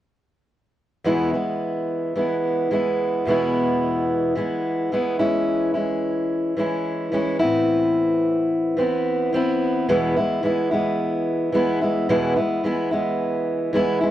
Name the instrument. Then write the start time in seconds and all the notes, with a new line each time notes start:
steel-string acoustic guitar
1.04 E2 B2 E3 G#3 B3 E4
1.33 E3 G#3 B3 E4
2.16 E3 G#3 B3 E4
2.71 E3 G#3 B3 E4
3.26 E2 B2 E3 G#3
3.30 B3 E4
4.35 E3 G#3 B3 E4
4.92 E3 G#3 B3 E4
5.19 E3 G#3 C#4 E4
5.74 G#3 C#4 E4
6.57 E3 G#3 C#4 E4
7.12 E3 G#3 C#4 E4
7.39 A2 E3 B3 C4 E4
8.77 E3 B3 C4 E4
9.33 E3 B3 C4 E4
9.89 E2 B2 E3 G#3 B3 E4
10.16 E3 G#3 B3 E4
10.43 E3 G#3 B3 E4
10.71 E3 G#3 B3 E4
11.52 E3 G#3 B3 E4
11.81 E3 G#3 B3 E4
12.09 E2 B2 E3 G#3 B3 E4
12.36 E3 G#3 B3 E4
12.64 E3 G#3 B3 E4
12.91 E3 G#3 B3 E4
13.73 E3 G#3 B3 E4
14.00 G#3 C#4 E4